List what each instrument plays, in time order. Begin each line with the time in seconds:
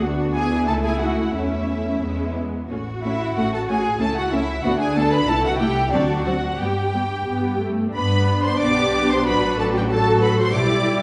0.03 double bass section D2, viola section B3 D4, cello section F#4
0.35 viola section B3, cello section E4, violin section G#4 G#5
0.67 double bass section C#2, viola section A3 E4, violin section A4 A5
0.83 violin section G#4 G#5
1.00 violin section F#4 F#5
1.33 double bass section E2, viola section A3 C#4, cello section C#4, violin section E4 E5
2.02 double bass section E2, viola section G#3 B3, cello section C#4
2.37 cello section B3
2.70 double bass section A1, viola section A3 C#4, cello section F#4
3.02 viola section A3 C#4, violin section E4 E5
3.36 double bass section A1, viola section A3 C#4, violin section F#4 F#5
3.53 violin section A4 A5
3.69 viola section A3 C#4, violin section G#4 G#5
4.00 double bass section C#2, viola section A3 C#4, cello section E4, violin section A4 A5
4.17 violin section F#4 F#5
4.32 viola section A3 C#4, violin section E4 E5
4.64 double bass section D2, viola section A3 B3, cello section D4, violin section F#4 F#5
4.79 violin section G#4 G#5
4.95 viola section A3 B3, violin section A4 A5
5.11 violin section B4 B5
5.28 double bass section C2, viola section A3 E4, cello section E4, violin section A4 A5
5.45 violin section F#4 F#5
5.58 viola section A3 E4, violin section G4 G5
5.91 double bass section D2, viola section F#3 C4, violin section D4 D5, cello section F#4
6.25 viola section F#3 C4, violin section F#4 F#5
6.58 double bass section G2, viola section G3 B3, violin section G4 G5, cello section G4
6.93 viola section G3 B3
7.26 double bass section G2, viola section B3
7.61 viola section A3
7.94 double bass section G2, viola section B3 D4, violin section B4 B5
8.44 violin section C5 C6
8.60 double bass section B1, viola section B3, cello section G4, violin section D5 D6
9.11 violin section C5 C6
9.26 double bass section A1, viola section F#3, cello section F#4, violin section B4 B5
9.58 violin section A4 A5
9.73 violin section G4 G5
9.91 viola section F#4, violin section A4 A5, cello section A4
10.22 violin section B4 B5
10.38 violin section C5 C6
10.54 double bass section B1, viola section G3 E4, cello section G4, violin section D5 D6